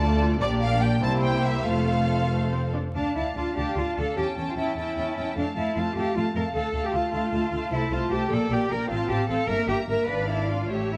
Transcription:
Already playing: double bass section D2, cello section D2, violin section A5
0.01 viola section A3 F4, violin section A4 D5
0.40 double bass section A#1, cello section A#2, viola section A#3 D4, violin section G4 D5
0.62 violin section F5
0.82 violin section G5
1.01 double bass section C2, cello section C3, viola section A#3 E4, violin section G4 C5 A5
1.24 violin section G5
1.45 violin section E5
1.64 double bass section F1, cello section F2, viola section A3 F4, violin section A4 C5 F5
2.31 viola section A3
2.52 viola section C4
2.74 viola section D4
2.94 double bass section D2, cello section D4, viola section D4, violin section F5 A5
3.15 double bass section D2, viola section D4, cello section E4, violin section F5 A5
3.35 double bass section D2, viola section D4, cello section F4, violin section F5 A5
3.55 double bass section D2, viola section D4, cello section G4, violin section F5 A5
3.75 double bass section D2, viola section D4, cello section F4, violin section F5 A5
3.96 double bass section D2, viola section D4, cello section A4, violin section F5 A5
4.15 double bass section E2, viola section C#4, cello section G4, violin section G5 A5
4.36 double bass section E2, viola section C#4, violin section G5 A5
4.48 cello section F4
4.56 double bass section E2, viola section C#4, cello section E4, violin section G5 A5
4.75 double bass section E2, viola section C#4, cello section E4, violin section G5 A5
4.96 double bass section E2, viola section C#4, violin section G5 A5
5.16 double bass section E2, viola section C#4, violin section G5 A5
5.36 double bass section F2, viola section A3, cello section D4, violin section F5 A5
5.56 double bass section F2, viola section A3, cello section E4, violin section F5 A5
5.76 double bass section F2, viola section A3, cello section F4, violin section F5 A5
5.95 double bass section F2, viola section A3, cello section G4, violin section F5 A5
6.15 double bass section F2, viola section A3, cello section F4, violin section F5 A5
6.34 double bass section F2, viola section A3, cello section A#4, violin section F5 A5
6.53 double bass section D2, viola section A3, cello section A4, violin section F5 A5
6.73 double bass section D2, viola section A3, violin section F5 A5
6.84 cello section G4
6.93 double bass section D2, viola section A3, cello section F4, violin section F5 A5
7.12 double bass section D2, viola section A3, cello section F4, violin section F5 A5
7.31 double bass section D2, viola section A3, violin section F5 A5
7.51 double bass section D2, viola section A3, violin section F5 A5
7.71 double bass section C2, viola section A3, cello section E4, violin section C5 A5
7.90 double bass section C2, viola section A3, cello section F4, violin section C5 A5
8.10 double bass section C2, viola section A3, cello section G4, violin section C5 A5
8.30 double bass section A#1, viola section A#3, cello section A4, violin section D5 G5
8.49 double bass section A#1, viola section A#3, cello section G4, violin section D5 G5
8.70 double bass section A#1, viola section A#3, cello section A#4, violin section D5 G5
8.88 double bass section A1, viola section C4, cello section F4, violin section F5 A5
9.09 double bass section A1, viola section C4, cello section G4, violin section F5 A5
9.29 double bass section A1, viola section C4, cello section A4, violin section F5 A5
9.48 double bass section G1, viola section A#3, cello section A#4, violin section E5 A#5
9.68 double bass section G1, viola section A#3, cello section G4, violin section E5 A#5
9.88 double bass section G1, viola section A#3, cello section A#4, violin section E5 A#5
10.08 double bass section G#1, viola section D4, cello section B4, violin section D5 F5
10.29 cello section E4
10.50 cello section F4
10.70 double bass section A1, viola section A3, cello section G4, violin section C#5 E5
10.92 cello section E4

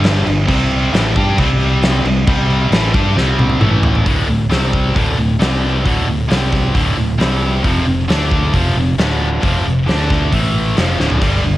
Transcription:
Already playing: fingered electric bass G1, distorted electric guitar G2 D3 G3
0.04 snare, crash
0.26 fingered electric bass G1, distorted electric guitar G2 D3, crash
0.47 fingered electric bass C2, distorted electric guitar C3 G3 C4, kick, crash
0.71 crash
0.92 fingered electric bass A1, distorted electric guitar A2 E3 A3, snare, crash
1.16 fingered electric bass G2, distorted electric guitar G3 D4 G4, kick, crash
1.38 fingered electric bass C2, distorted electric guitar C3 G3 C4, kick, crash
1.60 crash
1.82 snare, crash
2.04 fingered electric bass C2, distorted electric guitar C3 G3, crash
2.27 fingered electric bass C2, distorted electric guitar C3 G3 C4, kick, crash
2.50 crash
2.71 fingered electric bass A1, distorted electric guitar A2 E3 A3, snare, crash
2.93 fingered electric bass G2, distorted electric guitar G3 D4 G4, kick, crash
3.16 fingered electric bass C2, distorted electric guitar C3 G3 C4, snare
3.39 high tom
3.50 high tom
3.60 fingered electric bass A1, distorted electric guitar A2 E3 A3, mid tom
3.83 floor tom
3.95 floor tom
4.05 fingered electric bass D1, distorted electric guitar D2 A2 D3, kick, open hi-hat
4.27 fingered electric bass D1, distorted electric guitar D2 A2
4.50 fingered electric bass C2, distorted electric guitar C3 G3 C4, snare, open hi-hat
4.73 kick
4.95 fingered electric bass D1, distorted electric guitar D2 A2 D3, kick, open hi-hat
5.18 fingered electric bass D1, distorted electric guitar D2 A2
5.39 fingered electric bass C2, distorted electric guitar C3 G3 C4, snare, open hi-hat
5.85 fingered electric bass D1, distorted electric guitar D2 A2 D3, kick, open hi-hat
6.07 fingered electric bass D1, distorted electric guitar D2 A2
6.29 fingered electric bass C2, distorted electric guitar C3 G3 C4, snare, open hi-hat
6.53 kick, snare
6.73 fingered electric bass D1, distorted electric guitar D2 A2 D3, kick, open hi-hat
6.97 fingered electric bass D1, distorted electric guitar D2 A2
7.18 fingered electric bass C2, distorted electric guitar C3 G3 C4, snare, open hi-hat
7.63 fingered electric bass F1, distorted electric guitar F2 C3 F3, kick, open hi-hat
7.86 fingered electric bass F1, distorted electric guitar F2 C3
8.08 fingered electric bass D2, distorted electric guitar D3 A3 D4, snare, open hi-hat
8.31 kick
8.53 fingered electric bass F1, distorted electric guitar F2 C3 F3, kick, open hi-hat
8.75 fingered electric bass F1, distorted electric guitar F2 C3
8.97 fingered electric bass D1, distorted electric guitar D2 A2 D3, snare, open hi-hat
9.42 fingered electric bass F1, distorted electric guitar F2 C3 F3, kick, open hi-hat
9.65 fingered electric bass F1, distorted electric guitar F2 C3
9.86 fingered electric bass D2, distorted electric guitar D3 A3 D4, snare, open hi-hat
10.10 kick, snare
10.32 fingered electric bass A1, distorted electric guitar A2 E3 A3, kick, open hi-hat
10.77 fingered electric bass F1, distorted electric guitar F2 C3 F3, snare, open hi-hat
10.99 fingered electric bass D1, distorted electric guitar D2 A2 D3, snare
11.10 floor tom
11.21 fingered electric bass G1, distorted electric guitar G2 D3 G3, kick, open hi-hat, crash
11.44 fingered electric bass G1, distorted electric guitar G2 D3

